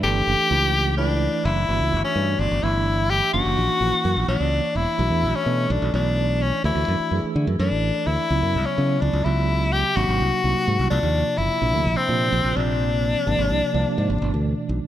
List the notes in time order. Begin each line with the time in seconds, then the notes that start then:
0.02 G1 E3 A3 D4 G4 A4
0.27 F#1
0.50 C#2 E3 A3 D4 E4
0.97 E3 A3 D4 E4
1.45 F#1 E4
1.68 G1 E3 A3 D4 F#4
1.80 C#2
1.92 G1
2.04 C#4
2.16 G2 E3 A3 D4 F#4
2.39 G1 D4
2.51 G1
2.63 G1 E3 A3 D4 E4
3.10 G4
3.33 F#1 E3 A#3 C#4 D4 F#4
3.45 F#1
3.57 A#1
3.69 muted fingered electric bass stroke
3.81 A#1 E3 A#3 C#4 E4
3.93 muted fingered electric bass stroke
4.05 F#2
4.17 A#1
4.28 A#1 E3 A#3 D4 C#5
4.40 C#2
4.75 E1 E4
4.98 B1 E3 A3 D4 F#4
5.10 E2
5.23 B1
5.35 C#4
5.46 B2 E3 A3 D4 A4
5.70 B1 D4
5.82 B1
5.94 B1 E3 A3 D4 E4
6.42 C#4
6.64 D2 E3 A3 D4 E4 F#4
6.75 D2
6.88 F#2
7.00 muted fingered electric bass stroke
7.11 F#2 E3 A3 D4 G#4
7.24 muted fingered electric bass stroke
7.36 D3
7.47 F#2
7.59 F#2 E3 A3 D4 A4
7.71 A1
8.06 D2 E4
8.30 C#2 C#3 F#3 B3 E4
8.42 F#2
8.55 C#2
8.66 C#4
8.77 C#3 F#3 B3 E4
9.01 C#2 D4
9.13 C#2
9.24 C#2 C#3 F#3 B3 E4 F#4
9.72 G4
9.95 G#1 C3 F#3 A#3 D4 F#4
10.09 G#1
10.21 C2
10.44 C2 C3 F#3 A#3 D#4
10.68 G#2
10.79 C2
10.90 C2 C3 F3 A#3 D4 F4
11.03 D#2
11.37 F#1 E4
11.61 A#1 C3 F3 A#3 D4
11.73 D2
11.85 A#1
11.97 C4
12.08 A#2 C3 F3 A#3 D4
12.32 A#1
12.44 A#1
12.55 A#1 C3 F3 A#3 C4 D4
13.26 G#1 C3 F3 A#3 D4
13.38 G#1
13.50 C2
13.63 muted fingered electric bass stroke
13.74 C2 C3 F3 A#3 D4
13.86 muted fingered electric bass stroke
13.98 G#2
14.10 G#1
14.21 G1 B2 E3 A3 D4
14.34 D2
14.69 B1